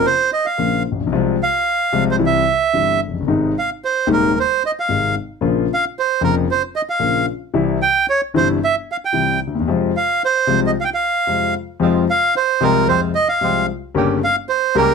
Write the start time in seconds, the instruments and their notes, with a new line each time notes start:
0.06 bandoneon C5
0.33 bandoneon D#5
0.46 bandoneon F5
0.58 grand piano A#1 A#2 C#3 F3 A#3 F4
0.92 grand piano A1
1.00 grand piano A#1
1.07 grand piano B1
1.12 grand piano C2 C3 F3 G#3 F4
1.43 bandoneon F5
1.92 grand piano C2 C3 F3 G#3 F4
2.11 bandoneon C5
2.19 grand piano C2 C3 E3 G3 E4
2.26 bandoneon E5
2.73 grand piano G1 G2 C3 E3 G3 E4
3.08 grand piano F1
3.14 grand piano F#1
3.20 grand piano G1
3.27 grand piano G#1 G#2 C3 D#3 G#3 D#4
3.59 bandoneon F5
3.85 bandoneon C5
4.07 grand piano D#1 D#2 C3 D#3 G#3 D#4
4.12 bandoneon A#4
4.40 bandoneon C5
4.66 bandoneon D#5
4.80 bandoneon F5
4.88 grand piano G#1 G#2 C3 D#3 G#3 D#4
5.41 grand piano A#1 A#2 C#3 F3 A#3 F4
5.74 bandoneon F5
5.99 bandoneon C5
6.21 grand piano F1 F2 C#3 F3 A#3 F4, bandoneon A#4
6.51 bandoneon C5
6.76 bandoneon D#5
6.90 bandoneon F5
6.99 grand piano A#1 A#2 C#3 F3 A#3 F4
7.54 grand piano C2 C3 E3 G3 E4
7.82 bandoneon G5
8.10 bandoneon C#5
8.34 grand piano G1 G2 C3 E3 G3 E4, bandoneon C5
8.64 bandoneon E5
8.92 bandoneon F5
9.05 bandoneon G5
9.12 grand piano C2 C3 E3 G3 E4
9.47 grand piano D2
9.55 grand piano D#2
9.60 grand piano E2
9.68 grand piano F2 C3 F3 G#3 F4
9.97 bandoneon F5
10.25 bandoneon C5
10.47 grand piano C2 C3 F3 G#3 F4
10.66 bandoneon D#5
10.81 bandoneon F5 G5
10.94 bandoneon F5
11.27 grand piano F2 C3 F3 G#3 F4
11.80 grand piano F2 C3 F3 G#3 F4, bandoneon G#3 C4 F4
12.10 bandoneon F5
12.37 bandoneon C5
12.61 grand piano C2 C3 F3 G#3 F4, bandoneon G#3 C4 F4 A#4
12.87 grand piano F2 C3 F3 G#3 F4, bandoneon G#3 C4 F4 C5
13.15 bandoneon D#5
13.29 bandoneon F5
13.41 grand piano C2 C3 F3 G#3 F4, bandoneon G#3 C4 F4
13.95 grand piano G1 G2 C#3 G3 A#3 G4, bandoneon A#3 C#4 G4
14.24 bandoneon F5
14.49 bandoneon C5
14.75 grand piano C#2 C#3 G3 A#3 G4, bandoneon A#3 C#4 G4 A#4